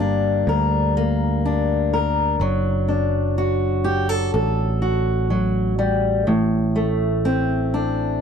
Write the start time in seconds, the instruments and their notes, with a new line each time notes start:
Already playing: picked electric bass G1, steel-string acoustic guitar G2 G3 A#3
0.00 steel-string acoustic guitar D4
0.47 picked electric bass D2, steel-string acoustic guitar A#4
0.97 steel-string acoustic guitar A#3
1.45 steel-string acoustic guitar D4
1.93 steel-string acoustic guitar A#4
2.40 picked electric bass F#1, steel-string acoustic guitar F#3
2.88 steel-string acoustic guitar D4
3.38 steel-string acoustic guitar F#4
3.84 steel-string acoustic guitar G4
4.09 steel-string acoustic guitar A4
4.34 picked electric bass A1, steel-string acoustic guitar A4
4.82 steel-string acoustic guitar F#4
5.30 steel-string acoustic guitar F#3
5.79 steel-string acoustic guitar G3
6.27 picked electric bass A1, steel-string acoustic guitar A2
6.76 steel-string acoustic guitar A3
7.25 steel-string acoustic guitar C4
7.74 steel-string acoustic guitar D4